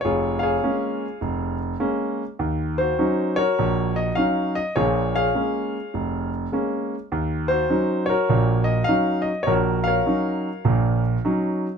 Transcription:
0.01 F1 F4 G#4 C#5
0.39 C#5 F5
0.43 G#4
0.63 G#3 A#3 C#4
1.21 F1
1.80 G#3 A#3 C#4
2.39 D#2
2.78 F#4 C5
2.99 F#3 C#4 D#4
3.36 F#4 A#4 C#5
3.59 A#1
3.96 D#5
4.15 F#3 C#4 D#4 F5
4.55 D#5
4.76 A#1 A#2 F4 G#4 C#5
5.15 G#4 C#5 F5
5.35 G#3 A#3 C#4
5.94 F1
6.52 G#3 A#3 C#4
7.12 D#2
7.48 F#4 C5
7.70 F#3 C#4 D#4
8.06 F#4 A#4 C#5
8.29 A#1 A#2
8.64 D#5
8.84 F5
8.88 F#3 C#4 D#4
9.22 D#5
9.43 A#1 C#5
9.47 F#4 A#4
9.84 A#4 C#5 F5
10.06 F#3 C#4 D#4
10.65 A#1 A#2
11.25 F#3 C#4 D#4

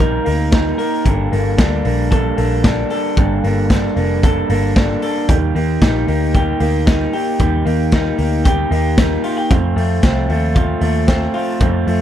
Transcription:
Already playing: A#1 C3 A#3 D#4
0.00 G3 A#3 D#4 A#4, kick
0.26 D2 A#3 D#4 A#4, open hi-hat
0.52 C3 G3 A#3 D#4 A#4, kick, snare, closed hi-hat
0.79 A#3 D#4 A#4, open hi-hat
1.05 G1 G2 D3 G3 A#3 D4 A4, kick, closed hi-hat
1.31 G1 G3 A#3 D4 A4, open hi-hat
1.58 D2 G2 D3 G3 A#3 D4 A4, kick, snare, closed hi-hat
1.84 A#1 G3 A#3 D4 A4, open hi-hat
2.11 G3 A#3 D4 A4, kick, closed hi-hat
2.38 A#1 G3 A#3 D4 A4, open hi-hat
2.64 G2 D3 G3 A#3 D4 A4, kick, snare, closed hi-hat
2.90 G3 A#3 D4 A4, open hi-hat
3.17 G1 G2 D3 G3 A#3 D4 A4, kick, closed hi-hat
3.44 G1 G3 A#3 D4 A4, open hi-hat
3.70 G2 D3 G3 A#3 D4 A4, kick, snare, closed hi-hat
3.96 F1 G3 A#3 D4 A4, open hi-hat
4.23 G3 A#3 D4 A4, kick, closed hi-hat
4.50 G1 G3 A#3 D4 A4, open hi-hat
4.76 G2 D3 G3 A#3 D4 A4, kick, snare, closed hi-hat
5.02 G3 A#3 D4 A4, open hi-hat
5.29 D#2 D#3 G3 A#3 D#4 G4, kick, closed hi-hat
5.55 D#2 A#3 D#4 G4, open hi-hat
5.81 A#1 D#3 G3 A#3 D#4 G4, kick, snare, closed hi-hat
6.08 D2 A#3 D#4 G4, open hi-hat
6.34 G3 A#3 D#4 G4, kick, closed hi-hat
6.60 D2 A#3 D#4 G4, open hi-hat
6.86 D#3 G3 A#3 D#4 G4, kick, snare, closed hi-hat
7.13 A#3 D#4 G4, open hi-hat
7.39 D#2 D#3 G3 A#3 D#4 G4, kick, closed hi-hat
7.66 D#2 A#3 D#4 G4, open hi-hat
7.92 D#3 G3 A#3 D#4 G4, kick, snare, closed hi-hat
8.18 D2 A#3 D#4 G4, open hi-hat
8.45 G3 A#3 D#4 G4, kick, closed hi-hat
8.71 D#2 A#3 D#4 G4, open hi-hat
8.97 D#3 G3 A#3 D#4 G4, kick, snare, closed hi-hat
9.24 A#3 D#4 F4 G4, open hi-hat
9.37 G4
9.50 F2 C3 F3 A3 C4 F4, kick, closed hi-hat
9.76 F2 F3 A3 C4 F4, open hi-hat
10.03 C2 F2 C3 F3 A3 C4 F4, kick, snare, closed hi-hat
10.29 D#2 F3 A3 C4 F4, open hi-hat
10.56 F3 A3 C4 F4, kick, closed hi-hat
10.81 D#2 F3 A3 C4 F4, open hi-hat
11.08 F2 C3 F3 A3 C4 F4, kick, snare, closed hi-hat
11.34 F3 A3 C4 F4, open hi-hat
11.60 F2 C3 F3 A3 C4 F4, kick, closed hi-hat
11.87 F2 F3 A3 C4 F4, open hi-hat

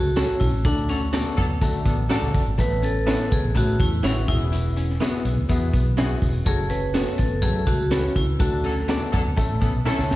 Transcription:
Already playing: C#2 A3 F#4
0.16 A3 C#4 F#4 A4 C#5, snare, closed hi-hat, tambourine
0.40 B1 E4, kick, open hi-hat, tambourine
0.52 A1
0.65 D2 A3 D4 F#4 A4, kick, closed hi-hat, tambourine
0.89 F#3 C#4 D4 A4, closed hi-hat, tambourine
1.13 A3 B3 D4 F#4 A4 D5, snare, closed hi-hat, tambourine
1.27 snare
1.37 F#2 F#3 D4 A4, kick, closed hi-hat, tambourine
1.49 D2
1.61 D3 A3 D4 F#4 A4, kick, closed hi-hat, tambourine
1.85 A1 F#3 B3 D4 A4, kick, closed hi-hat, tambourine
2.09 F#3 A3 D4 F#4 A4 D5, snare, closed hi-hat, tambourine
2.22 C#2
2.34 F#1, kick, closed hi-hat, tambourine
2.46 G#1
2.58 A1 A3 B3 C#4 E4 A4 B4, kick, closed hi-hat, tambourine
2.82 C#4 A4, closed hi-hat, tambourine
3.06 B3 C#4 E4 A4 B4 C#5, snare, closed hi-hat, tambourine
3.21 snare
3.31 C#2 G#4, kick, closed hi-hat, tambourine
3.43 A1
3.54 A2 A3 B3 C#4 E4 F#4 A4, kick, closed hi-hat, tambourine
3.79 E2 A3 E4, kick, closed hi-hat, tambourine
4.03 A1 B3 C#4 E4 F#4 B4 C#5, snare, closed hi-hat, tambourine
4.28 E1 B3 E4 F#4 G#4, kick, open hi-hat, tambourine
4.52 E4, closed hi-hat, tambourine
4.77 C#4, closed hi-hat, tambourine
4.90 snare
5.00 B3 E4 F#4 G#4, snare, closed hi-hat, tambourine
5.15 snare
5.25 B1, closed hi-hat, tambourine
5.37 D2
5.49 E2 B3 E4 F#4 G#4, kick, closed hi-hat, tambourine
5.73 B1 B3, kick, closed hi-hat, tambourine
5.97 B3 E4 F#4 G#4, snare, closed hi-hat, tambourine
6.22 E1, kick, open hi-hat, tambourine
6.46 F#1 A3 C#4 F#4 G#4 A4, kick, closed hi-hat, tambourine
6.70 C#4 B4, closed hi-hat, tambourine
6.94 A3 B3 C#4 F#4 A4 C#5, snare, closed hi-hat, tambourine
7.08 snare
7.18 A1 A4, kick, closed hi-hat, tambourine
7.31 F#1
7.42 F#2 A3 C#4 F#4 G#4 A4, kick, closed hi-hat, tambourine
7.67 C#2 A3 F#4, kick, closed hi-hat, tambourine
7.91 A3 C#4 F#4 A4 B4 C#5, snare, closed hi-hat, tambourine
8.16 C#2 E4, kick, closed hi-hat, tambourine
8.39 D2 A3 D4 F#4 A4, kick, closed hi-hat, tambourine
8.64 F#3 C#4 D4 A4, closed hi-hat, tambourine
8.77 snare
8.88 A3 B3 D4 F#4 A4 D5, snare, closed hi-hat, tambourine
9.12 F#2 F#3 D4 A4, kick, closed hi-hat, tambourine
9.25 D2
9.36 A1 A3 C#4 E4 A4, kick, closed hi-hat, tambourine
9.50 A2
9.61 A1 E3 B3 C#4 A4, kick, closed hi-hat, tambourine
9.75 B1
9.85 E3 A3 C#4 E4 A4 C#5, snare, tambourine
9.99 C#2, snare
10.11 F#1, snare, tambourine

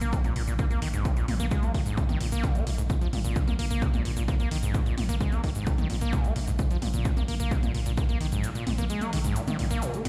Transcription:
0.01 A#1 A#3, closed hi-hat, shaker
0.13 A#2, kick, closed hi-hat, shaker
0.24 A#2, closed hi-hat, mid tom, shaker
0.36 A#1 A#2, open hi-hat
0.47 A#1 A#2, closed hi-hat, shaker
0.59 A#3, kick, closed hi-hat, shaker
0.71 A#3, closed hi-hat, shaker
0.82 A#1 D#3, open hi-hat
0.94 A#1 G#2, closed hi-hat, shaker
1.05 A#2, kick, closed hi-hat, shaker
1.17 A#2, closed hi-hat, shaker
1.28 A#1 A#2, mid tom, open hi-hat
1.40 A#1 A#3, closed hi-hat, shaker
1.51 G#3, kick, closed hi-hat, shaker
1.63 A#3, closed hi-hat, mid tom, shaker
1.74 A#1 D#3, kick, open hi-hat
1.86 A#1 G#2, closed hi-hat, shaker
1.97 A#2, kick, closed hi-hat, shaker
2.09 D#3, closed hi-hat, mid tom, shaker
2.20 A#1 A#2, open hi-hat
2.32 A#1 A#3, shaker
2.44 A#2, kick, closed hi-hat, shaker
2.55 A#3, closed hi-hat, shaker
2.67 A#1 A#2, open hi-hat
2.78 A#1 G#2, closed hi-hat, shaker
2.90 A#2, kick, closed hi-hat, shaker
3.01 F3, closed hi-hat, shaker
3.13 A#1 A#2, mid tom, open hi-hat
3.24 A#1 A#2, closed hi-hat, shaker
3.36 A#1, kick, closed hi-hat, shaker
3.48 A#3, closed hi-hat, mid tom, shaker
3.59 A#1 A#3, open hi-hat
3.71 A#1 A#3, closed hi-hat, shaker
3.82 A#2, kick, closed hi-hat, shaker
3.94 A#2, closed hi-hat, mid tom, shaker
4.05 A#1 A#2, open hi-hat
4.17 A#1 A#2, closed hi-hat, shaker
4.28 A#3, kick, closed hi-hat, shaker
4.40 A#3, closed hi-hat, shaker
4.51 A#1 D#3, open hi-hat
4.63 A#1 G#2, closed hi-hat, shaker
4.74 A#2, kick, closed hi-hat, shaker
4.86 A#2, closed hi-hat, shaker
4.97 A#1 A#2, mid tom, open hi-hat
5.09 A#1 A#3, closed hi-hat, shaker
5.21 G#3, kick, closed hi-hat, shaker
5.32 A#3, closed hi-hat, mid tom, shaker
5.44 A#1 D#3, kick, open hi-hat
5.55 A#1 G#2, closed hi-hat, shaker
5.67 A#2, kick, closed hi-hat, shaker
5.78 D#3, closed hi-hat, mid tom, shaker
5.90 A#1 A#2, open hi-hat
6.01 A#1 A#3, closed hi-hat, shaker
6.13 A#2, kick, closed hi-hat, shaker
6.24 A#3, closed hi-hat, shaker
6.36 A#1 A#2, open hi-hat
6.47 A#1 G#2, closed hi-hat, shaker
6.59 A#2, kick, closed hi-hat, shaker
6.71 F3, closed hi-hat, shaker
6.82 A#1 A#2, mid tom, open hi-hat
6.94 A#1 A#2, closed hi-hat, shaker
7.05 A#1, kick, closed hi-hat, shaker
7.17 A#3, closed hi-hat, mid tom, shaker
7.28 A#1 A#3, open hi-hat
7.40 A#1 A#3, closed hi-hat, shaker
7.51 A#2, kick, closed hi-hat, shaker
7.63 A#2, closed hi-hat, mid tom, shaker
7.74 A#1 A#2, open hi-hat
7.86 A#1 A#2, closed hi-hat, shaker
7.97 A#3, kick, closed hi-hat, shaker
8.09 A#3, closed hi-hat, shaker
8.20 A#1 D#3, open hi-hat
8.32 A#1 G#2, closed hi-hat, shaker
8.44 A#2, closed hi-hat, shaker
8.55 A#2, closed hi-hat, shaker
8.67 A#1 A#2, mid tom, open hi-hat
8.78 A#1 A#3, closed hi-hat, shaker
8.90 G#3, closed hi-hat, shaker
9.01 A#3, closed hi-hat, mid tom, shaker
9.13 A#1 D#3, open hi-hat
9.24 A#1 G#2, closed hi-hat, shaker
9.36 A#2, closed hi-hat, shaker
9.47 D#3, closed hi-hat, mid tom, shaker
9.59 A#1 A#2, open hi-hat
9.71 A#1 A#3, closed hi-hat, shaker
9.82 A#2, closed hi-hat, shaker
9.94 A#3, closed hi-hat, shaker
10.05 A#1 A#2, mid tom, open hi-hat

